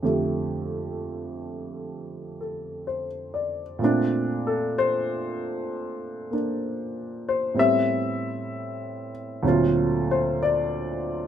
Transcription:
0.03 3.79 F2 soft
0.03 3.80 D3 soft
0.03 3.79 A3 soft
0.03 3.81 G4 soft
2.41 3.06 A4 soft
2.87 3.61 C5 soft
3.34 4.00 D5 soft
3.79 7.56 A#2 medium
3.79 7.57 A3 medium
3.83 7.55 C4 soft
3.83 6.32 D4 medium
4.47 4.75 A4 medium
4.78 6.30 C5 medium
6.31 7.56 A#3 soft
6.31 7.57 D4 soft
7.29 7.57 C5 medium
7.54 9.43 A2 soft
7.54 9.44 G3 soft
7.54 9.44 B3 soft
7.54 9.44 C4 medium
7.59 9.11 E5 medium
9.43 11.27 D2 medium
9.43 11.27 A#2 medium
9.43 11.27 F#3 medium
9.43 11.27 C4 medium
9.48 11.27 F4 medium
10.11 10.40 C5 medium
10.43 11.27 D5 medium

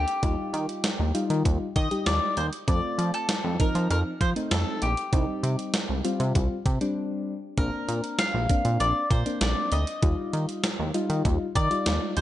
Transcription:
0.00 1.81 G4 medium
0.08 closed hi-hat medium
0.23 0.36 D#2 loud
0.23 0.85 G3 medium
0.23 0.85 D#4 medium
0.23 0.85 F4 medium
0.23 kick loud
0.23 closed hi-hat medium
0.53 0.66 D#3 medium
0.53 closed hi-hat medium
0.69 closed hi-hat soft
0.84 snare loud
0.84 closed hi-hat medium
0.99 1.12 D#2 loud
1.15 1.67 G3 medium
1.15 1.67 D#4 medium
1.15 1.67 F4 loud
1.15 closed hi-hat medium
1.30 1.43 D#3 medium
1.30 closed hi-hat medium
1.45 1.58 D#2 loud
1.45 kick medium
1.45 closed hi-hat medium
1.76 1.89 D#3 loud
1.76 2.04 D#5 loud
1.76 kick medium
1.76 closed hi-hat medium
1.91 2.43 G3 medium
1.91 2.43 D#4 medium
1.91 2.43 G4 medium
1.91 closed hi-hat medium
2.06 2.20 D#2 loud
2.06 2.37 D5 medium
2.06 snare loud
2.06 closed hi-hat medium
2.37 2.50 D#2 loud
2.37 2.46 C5 medium
2.37 closed hi-hat medium
2.53 closed hi-hat medium
2.68 2.81 F2 loud
2.68 3.30 A3 medium
2.68 3.30 C4 medium
2.68 3.30 F4 medium
2.68 3.15 D5 loud
2.68 kick loud
2.68 closed hi-hat medium
2.98 3.11 F3 loud
2.98 closed hi-hat medium
3.14 3.61 A4 medium
3.14 closed hi-hat soft
3.29 snare loud
3.29 closed hi-hat medium
3.44 3.57 F2 loud
3.60 4.12 F3 medium
3.60 4.12 C4 medium
3.60 4.12 D#4 medium
3.60 3.89 A#4 medium
3.60 kick medium
3.60 closed hi-hat medium
3.75 3.88 F3 loud
3.75 closed hi-hat medium
3.90 4.03 F2 loud
3.90 3.99 A#4 medium
3.90 closed hi-hat medium
4.21 4.34 F3 medium
4.21 4.29 C5 medium
4.21 kick medium
4.21 closed hi-hat medium
4.36 4.88 A3 medium
4.36 4.88 C4 medium
4.36 4.88 D#4 medium
4.36 closed hi-hat medium
4.51 4.64 F2 loud
4.51 4.80 A4 medium
4.51 snare loud
4.51 closed hi-hat medium
4.82 4.95 A#1 medium
4.82 6.62 G4 medium
4.82 closed hi-hat medium
4.97 closed hi-hat medium
5.13 5.26 C2 loud
5.13 5.75 G3 medium
5.13 5.75 C4 medium
5.13 5.75 D#4 medium
5.13 kick loud
5.13 closed hi-hat medium
5.43 5.56 C3 medium
5.43 closed hi-hat medium
5.59 closed hi-hat soft
5.74 snare loud
5.74 closed hi-hat medium
5.89 6.02 C2 medium
6.04 6.57 G3 medium
6.04 6.57 C4 medium
6.04 6.57 F4 medium
6.04 closed hi-hat medium
6.20 6.33 C3 loud
6.20 closed hi-hat medium
6.35 6.48 C2 loud
6.35 kick medium
6.35 closed hi-hat medium
6.66 6.79 C3 loud
6.66 kick medium
6.66 closed hi-hat medium
6.81 7.33 G3 medium
6.81 7.33 C4 medium
6.81 7.33 D4 medium
6.81 closed hi-hat medium
7.58 7.71 A#1 loud
7.58 8.20 A#3 medium
7.58 8.20 C4 medium
7.58 8.20 D4 medium
7.58 8.21 A#4 medium
7.58 kick loud
7.58 closed hi-hat medium
7.88 8.01 A#2 loud
7.88 closed hi-hat medium
8.04 closed hi-hat soft
8.19 8.82 F5 loud
8.19 snare loud
8.19 closed hi-hat medium
8.34 8.47 A#1 medium
8.49 9.01 A#3 medium
8.49 9.02 C4 medium
8.49 9.01 D4 medium
8.49 kick medium
8.49 closed hi-hat medium
8.65 8.78 A#2 medium
8.65 closed hi-hat medium
8.80 8.93 A#1 loud
8.80 9.10 D5 loud
8.80 closed hi-hat medium
9.11 9.24 A#2 loud
9.11 9.41 C5 medium
9.11 kick medium
9.11 closed hi-hat medium
9.26 9.78 A#3 medium
9.26 9.78 C4 medium
9.26 9.78 D4 medium
9.26 closed hi-hat medium
9.41 9.54 A#1 loud
9.41 9.72 D5 medium
9.41 snare loud
9.41 closed hi-hat medium
9.72 9.85 D2 medium
9.72 10.29 D#5 medium
9.72 closed hi-hat medium
9.87 closed hi-hat medium
10.02 10.15 D#2 loud
10.02 10.65 G3 medium
10.02 10.65 D#4 medium
10.02 10.65 F4 medium
10.02 kick loud
10.02 closed hi-hat medium
10.33 10.46 D#3 medium
10.33 closed hi-hat medium
10.49 closed hi-hat soft
10.64 snare loud
10.64 closed hi-hat medium
10.79 10.92 D#2 loud
10.94 11.46 G3 medium
10.94 11.46 D#4 medium
10.94 11.46 F4 loud
10.94 closed hi-hat medium
11.10 11.23 D#3 loud
11.10 closed hi-hat medium
11.25 11.38 D#2 loud
11.25 kick medium
11.25 closed hi-hat medium
11.55 11.68 D#3 loud
11.55 12.16 D5 loud
11.55 kick medium
11.55 closed hi-hat medium
11.71 12.21 G3 medium
11.71 12.21 D#4 medium
11.71 12.21 F4 medium
11.71 closed hi-hat medium
11.86 11.99 D#2 loud
11.86 snare loud
11.86 closed hi-hat medium
12.17 12.21 D#2 loud
12.17 12.21 C5 loud
12.17 closed hi-hat medium

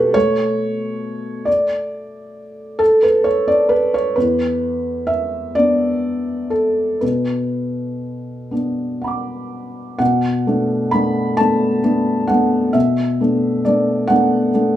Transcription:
0.00 1.43 B2 medium
0.00 0.17 F#4 medium
0.00 0.17 G4 medium
0.00 0.17 A4 medium
0.00 0.15 B4 medium
0.14 4.17 A3 medium
0.14 1.46 C#5 loud
1.45 2.80 D5 medium
2.79 3.02 A4 medium
3.03 3.25 B4 medium
3.24 3.47 C#5 medium
3.48 3.71 D5 medium
3.69 3.93 B4 medium
3.94 4.17 C#5 medium
4.16 6.98 E2 medium
4.16 5.08 B4 medium
5.07 5.55 E5 medium
5.55 6.98 B3 soft
5.55 6.98 D4 soft
5.55 6.52 D5 medium
6.50 7.01 A4 medium
7.01 9.96 B2 soft
7.01 8.51 B4 soft
8.51 9.96 B3 soft
8.51 9.97 D4 soft
9.02 9.96 F#5 soft
9.02 9.98 B5 soft
9.07 9.99 D6 soft
9.99 10.45 B2 medium
9.99 10.91 F#5 medium
10.47 10.88 A3 soft
10.47 10.89 B3 soft
10.47 10.89 D4 soft
10.91 11.34 A3 soft
10.91 11.34 B3 soft
10.91 11.34 D4 soft
10.91 11.37 B5 medium
11.37 11.80 A3 soft
11.37 11.80 B3 soft
11.37 11.80 D4 soft
11.37 12.29 A5 medium
11.84 12.25 A3 soft
11.84 12.25 B3 soft
11.84 12.25 D4 soft
12.28 12.71 A3 soft
12.28 12.71 B3 soft
12.28 12.71 D4 soft
12.28 12.74 F#5 medium
12.73 13.19 B2 medium
12.73 13.64 E5 medium
13.21 13.62 A3 soft
13.21 13.62 B3 soft
13.21 13.62 D4 soft
13.65 14.06 A3 soft
13.65 14.06 B3 soft
13.65 14.07 D4 soft
13.65 14.10 D5 medium
14.08 14.50 A3 soft
14.08 14.50 B3 soft
14.08 14.50 D4 medium
14.08 14.77 F#5 medium
14.54 14.77 A3 soft
14.54 14.77 B3 soft
14.54 14.77 D4 soft

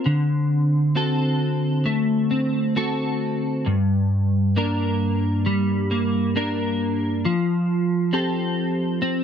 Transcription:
0.00 0.95 C4 soft
0.00 0.15 F4 soft
0.00 0.16 A#4 soft
0.06 3.66 D3 medium
0.96 2.30 C4 soft
0.96 2.75 F#4 soft
0.96 2.76 A4 soft
1.86 3.75 A3 soft
2.31 2.75 C4 soft
2.76 3.75 C4 soft
2.76 3.76 F#4 soft
2.76 3.76 A4 soft
3.66 7.25 G2 medium
4.56 5.90 A#3 soft
4.56 6.35 D4 soft
4.56 6.36 A#4 soft
5.46 7.25 G3 medium
5.91 6.34 A#3 soft
6.36 7.34 A#3 soft
6.36 7.34 D4 soft
6.36 7.34 A#4 medium
7.25 9.24 F3 medium
8.13 9.01 C4 soft
8.13 9.24 G4 soft
8.13 9.24 A4 medium
9.02 9.24 C4 medium

